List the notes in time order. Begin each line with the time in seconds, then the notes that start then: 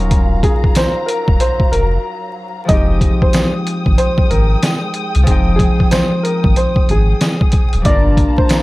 Already playing: D#1 F#3 A#3 C#4 D#4 F4 A#4 F5 A#5
0.11 kick, closed hi-hat
0.43 G#4, kick, closed hi-hat
0.64 kick
0.75 C5, snare, closed hi-hat, tambourine
1.06 A#4, closed hi-hat
1.28 D#1, kick
1.40 C5, closed hi-hat
1.60 kick
1.72 F1 A#4, closed hi-hat
2.65 F3 G#3 D#5, closed hi-hat
2.69 F1 G#3 C4 D#4 G5 D#6, kick
2.73 G4
3.01 kick, closed hi-hat
3.22 C5, kick
3.33 snare, closed hi-hat, tambourine
3.67 closed hi-hat
3.86 G#1, kick
3.98 C5, closed hi-hat
4.18 kick
4.30 G#1 A#4, closed hi-hat
4.63 snare, closed hi-hat, tambourine
4.94 closed hi-hat
5.15 C2, closed hi-hat
5.23 F3 G#3, kick, closed hi-hat
5.27 F1 C4 D#4
5.31 G5
5.56 G#4, kick, closed hi-hat
5.80 kick
5.91 C5, snare, closed hi-hat, tambourine
6.23 A#4, closed hi-hat
6.44 G#1, kick
6.56 C5, closed hi-hat
6.76 kick
6.89 G#1 G#4, closed hi-hat
7.21 snare, closed hi-hat, tambourine
7.41 kick
7.52 kick, closed hi-hat
7.73 D1, closed hi-hat
7.82 G1 G3 A#3 D5 F5 A5 A#5, kick, closed hi-hat
7.86 D4 F4 A#4
8.17 kick, closed hi-hat
8.38 C5, kick
8.49 snare, closed hi-hat, tambourine